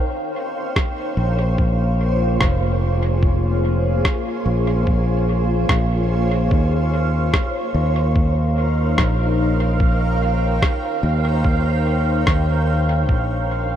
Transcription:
0.00 8.71 A#3 medium
0.00 1.02 D#4 medium
0.00 1.75 A#4 medium
0.00 13.76 C5 medium
0.00 13.76 C#5 medium
0.00 1.84 F5 medium
0.00 13.76 F5 medium
0.00 2.60 G5 medium
0.51 9.17 F4 medium
0.76 kick medium
0.76 cross-stick medium
1.17 2.37 A#1 medium
1.47 6.52 G#4 medium
1.58 kick loud
2.40 4.02 F1 medium
2.40 kick loud
2.40 cross-stick medium
3.23 kick loud
4.05 kick loud
4.05 cross-stick medium
4.46 5.66 A#1 medium
4.87 kick loud
5.69 6.48 A#1 medium
5.69 kick loud
5.69 cross-stick medium
6.51 7.30 D#2 medium
6.51 13.76 D#4 medium
6.51 kick loud
6.98 13.76 A#4 medium
7.12 13.76 F5 medium
7.33 kick loud
7.33 cross-stick medium
7.74 8.95 D#2 medium
8.16 kick loud
8.94 13.76 G5 medium
8.98 10.59 A#1 medium
8.98 kick loud
8.98 cross-stick medium
9.80 kick loud
10.62 kick loud
10.62 cross-stick medium
11.03 12.23 D#2 medium
11.45 kick loud
12.27 13.09 D#2 medium
12.27 kick loud
12.27 cross-stick medium
13.09 13.76 A#1 medium
13.09 13.76 A#3 medium
13.09 kick medium
13.60 13.76 F4 medium

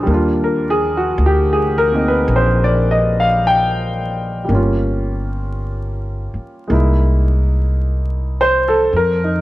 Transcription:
0.00 4.43 G3 medium
0.00 0.10 D4 medium
0.00 0.11 G#4 medium
0.00 0.11 A4 medium
0.00 0.11 A#4 medium
0.00 0.11 C5 medium
0.07 1.14 D#2 medium
0.07 1.90 A#3 soft
0.11 4.51 D4 soft
0.11 4.52 F4 medium
0.44 0.81 A#4 medium
0.70 0.94 G#4 medium
0.97 1.17 F#4 medium
1.18 2.25 D2 medium
1.26 1.59 G4 medium
1.53 1.91 G#4 medium
1.78 2.03 A#4 medium
1.92 4.47 A#3 soft
1.92 4.51 C4 soft
1.92 4.51 D#4 soft
2.08 2.27 B4 medium
2.28 4.45 A#1 medium
2.36 2.69 C5 medium
2.64 3.01 D5 medium
2.91 3.15 D#5 medium
3.20 3.38 F5 medium
3.47 4.50 G5 medium
4.45 6.68 G3 soft
4.45 6.68 A#3 soft
4.49 6.30 G1 medium
4.49 6.71 C#4 soft
4.55 6.73 F4 medium
6.34 muted upright bass stroke soft
6.68 8.87 C2 medium
6.68 8.90 G#3 soft
6.68 8.91 A#3 soft
6.68 8.91 D#4 soft
6.73 8.92 E4 soft
8.41 8.65 C5 medium
8.68 8.88 A4 medium
8.93 9.41 F2 medium
8.93 9.30 A#4 medium
9.24 9.41 D#4 soft

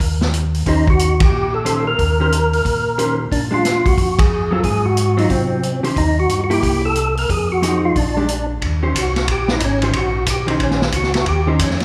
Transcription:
0.00 0.63 D#2 medium
0.00 kick soft
0.00 open hi-hat soft
0.21 snare soft
0.34 closed hi-hat medium
0.54 open hi-hat soft
0.66 1.29 D#2 medium
0.66 0.86 D#3 medium
0.66 0.86 C#4 medium
0.66 0.87 D#4 medium
0.66 0.86 G4 medium
0.66 0.86 C5 medium
0.66 kick soft
0.66 open hi-hat soft
0.87 1.23 F#4 loud
0.87 kick medium
0.99 closed hi-hat medium
1.20 1.55 G4 medium
1.20 kick medium
1.20 ride medium
1.32 1.95 A#2 medium
1.54 1.85 A4 loud
1.65 1.84 D#3 medium
1.65 1.84 C#4 medium
1.65 1.84 G4 medium
1.65 1.85 C5 medium
1.65 closed hi-hat medium
1.87 3.15 A#4 loud
1.99 2.62 D#2 medium
1.99 kick soft
1.99 open hi-hat soft
2.20 2.31 D#3 medium
2.20 2.31 C#4 medium
2.20 2.31 G4 medium
2.20 2.31 C5 medium
2.32 closed hi-hat medium
2.53 open hi-hat soft
2.65 3.28 A#2 medium
2.65 kick soft
2.65 open hi-hat soft
2.98 3.17 D#3 medium
2.98 3.17 C#4 medium
2.98 3.17 G4 medium
2.98 3.17 C5 medium
2.98 closed hi-hat soft
3.32 3.94 A#2 medium
3.32 3.41 D4 medium
3.32 kick soft
3.32 open hi-hat soft
3.51 3.62 G#3 medium
3.51 3.63 D4 medium
3.51 3.87 F4 medium
3.51 3.63 G4 medium
3.65 snare soft
3.65 closed hi-hat medium
3.86 4.20 F#4 medium
3.86 kick medium
3.86 open hi-hat soft
3.97 4.60 F2 medium
3.97 kick soft
3.97 open hi-hat soft
4.19 4.53 G#4 medium
4.19 kick medium
4.19 ride medium
4.51 4.62 F#3 medium
4.51 4.63 C4 medium
4.51 4.63 F4 medium
4.51 4.63 A4 medium
4.63 5.26 G#2 medium
4.63 4.86 G#4 medium
4.63 kick soft
4.63 open hi-hat soft
4.85 5.19 F#4 medium
4.97 closed hi-hat medium
5.17 5.60 F#3 medium
5.17 5.60 C4 medium
5.17 5.31 D#4 medium
5.17 5.61 F4 medium
5.17 open hi-hat soft
5.30 5.80 C3 medium
5.30 5.81 C4 medium
5.30 kick soft
5.30 open hi-hat soft
5.63 closed hi-hat soft
5.83 5.90 C3 soft
5.83 5.94 D#3 medium
5.83 5.95 C#4 medium
5.83 5.95 G4 medium
5.83 5.95 C5 medium
5.83 open hi-hat soft
5.96 6.27 D#2 medium
5.96 6.19 D#4 medium
5.96 kick soft
5.96 open hi-hat soft
6.20 6.41 F#4 loud
6.29 6.60 G2 medium
6.29 closed hi-hat medium
6.44 6.52 F#4 medium
6.50 6.93 A#3 medium
6.50 6.93 E4 medium
6.50 6.93 G4 medium
6.50 6.82 G4 medium
6.50 open hi-hat soft
6.63 7.26 C2 medium
6.63 kick soft
6.63 open hi-hat soft
6.85 7.15 A4 loud
6.95 closed hi-hat medium
7.17 7.30 A#4 medium
7.17 open hi-hat soft
7.29 7.92 F2 medium
7.29 7.49 G#4 medium
7.29 kick soft
7.29 open hi-hat soft
7.52 7.82 F#4 medium
7.62 7.95 F3 soft
7.62 7.95 C4 medium
7.62 7.96 D#4 medium
7.62 7.96 G#4 medium
7.62 closed hi-hat medium
7.85 7.96 F4 medium
7.95 8.58 A#1 medium
7.95 8.47 D4 medium
7.95 kick soft
7.95 open hi-hat soft
8.17 8.27 G#3 medium
8.17 8.28 D4 medium
8.17 8.28 G4 medium
8.28 closed hi-hat medium
8.62 8.94 D#2 medium
8.62 kick soft
8.62 ride medium
8.83 8.93 D#3 medium
8.83 8.93 C#4 medium
8.83 8.94 G4 medium
8.83 8.94 C5 medium
8.95 9.27 C2 medium
8.95 9.27 F#4 medium
8.95 kick soft
8.95 hi-hat pedal medium
8.95 ride medium
9.16 snare soft
9.16 ride soft
9.28 9.60 A#1 medium
9.28 9.50 G4 medium
9.28 kick soft
9.28 ride medium
9.48 9.62 D#4 medium
9.48 snare medium
9.60 9.93 G#1 medium
9.60 kick soft
9.60 hi-hat pedal soft
9.60 ride medium
9.65 9.83 C#4 medium
9.82 9.93 D#3 medium
9.82 9.93 C#4 medium
9.82 9.93 G4 medium
9.82 9.94 C5 medium
9.82 ride soft
9.93 10.26 A#1 medium
9.93 10.26 F#4 medium
9.93 kick soft
9.93 ride medium
10.26 10.59 B1 medium
10.26 10.49 G4 medium
10.26 kick soft
10.26 hi-hat pedal medium
10.26 ride medium
10.47 10.90 D#3 medium
10.47 10.90 C#4 medium
10.47 10.61 D#4 medium
10.47 10.90 G4 medium
10.47 10.91 C5 medium
10.47 ride soft
10.59 10.92 A#1 medium
10.59 10.82 C#4 medium
10.59 kick soft
10.59 ride medium
10.71 snare soft
10.82 snare soft
10.92 11.25 C#2 medium
10.92 11.25 F#4 medium
10.92 kick soft
10.92 hi-hat pedal soft
10.92 ride medium
11.03 snare soft
11.14 snare soft
11.14 ride soft
11.26 11.58 D#2 medium
11.26 11.48 G4 medium
11.26 kick soft
11.26 ride soft
11.47 11.58 D#3 medium
11.47 11.58 C#4 medium
11.47 11.59 D#4 medium
11.47 11.58 G4 medium
11.47 11.58 C5 medium
11.59 11.85 F2 medium
11.59 11.81 C#4 medium
11.59 kick soft
11.59 hi-hat pedal medium
11.59 ride medium
11.70 snare soft
11.80 snare soft
11.80 ride soft

